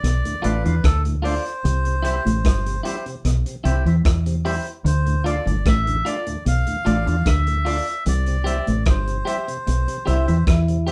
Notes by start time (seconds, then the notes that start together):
Already playing: D5
0.03 B1 B2, cross-stick, closed hi-hat
0.25 D2 A2, closed hi-hat
0.42 A1 A2 A3 D4 F4 A4 B4 D5, closed hi-hat
0.64 E2 E3 D4 F4, muted clean electric guitar stroke, closed hi-hat
0.84 D2 D3 A4, kick, cross-stick, closed hi-hat
1.05 D2 A2, closed hi-hat
1.22 A3 D4 F4 A4 C5 D5, open hi-hat
1.46 closed hi-hat
1.64 C2 C3, closed hi-hat
1.85 C3, closed hi-hat
2.03 G3 C4 E4 G4 C5, closed hi-hat
2.25 A1 A2 C3, closed hi-hat
2.44 G1 G2, kick, cross-stick, closed hi-hat
2.66 C3, closed hi-hat
2.83 G3 C4 E4 G4 C5, closed hi-hat
3.06 C3, closed hi-hat
3.25 B1 B2, cross-stick, closed hi-hat
3.46 C3, closed hi-hat
3.64 C2 C3 G3 C4 E4 G4 C5, closed hi-hat
3.85 E2 E3 C4 E4, muted clean electric guitar stroke, closed hi-hat
4.05 E2 E3, kick, cross-stick, closed hi-hat
4.26 C3, closed hi-hat
4.45 G3 C4 E4 G4 C5, open hi-hat
4.66 closed hi-hat
4.85 D2 D3 C5, closed hi-hat
5.06 D2 A2, closed hi-hat
5.24 A3 D4 F4 A4 D5, closed hi-hat
5.46 G1 D2 G2 A2, closed hi-hat
5.66 A1 A2 E5, kick, cross-stick, closed hi-hat
5.86 D2 A2, closed hi-hat
6.05 A3 D4 F4 A4 D5, closed hi-hat
6.27 D2 A2, closed hi-hat
6.45 B1 B2 F5, closed hi-hat
6.67 D2 A2, closed hi-hat
6.85 A1 A2 A3 D4 F4 A4 D5, closed hi-hat
7.06 E2 E3 D4 F4, muted clean electric guitar stroke, closed hi-hat
7.25 D2 D3 E5, kick, cross-stick, closed hi-hat
7.47 D2 A2, closed hi-hat
7.65 A3 D4 F4 A4 D5, open hi-hat
7.87 closed hi-hat
8.06 C2 C3 D5, closed hi-hat
8.26 C3, closed hi-hat
8.44 G3 C4 E4 G4 C5 E5, closed hi-hat
8.67 A1 A2 C3, closed hi-hat
8.85 G1 G2 C5, kick, cross-stick, closed hi-hat
9.07 C3, closed hi-hat
9.25 G3 C4 E4 G4 C5 E5, closed hi-hat
9.48 C3, closed hi-hat
9.67 B1 B2, closed hi-hat
9.88 C3, closed hi-hat
10.06 C2 C3 G3 C4 E4 G4 C5 E5, closed hi-hat
10.27 E2 E3 C4 E4, muted clean electric guitar stroke, closed hi-hat
10.47 E2 E3 E4, kick, cross-stick, closed hi-hat
10.68 C3, closed hi-hat
10.87 G3 C4 E4 G4 C5 E5, open hi-hat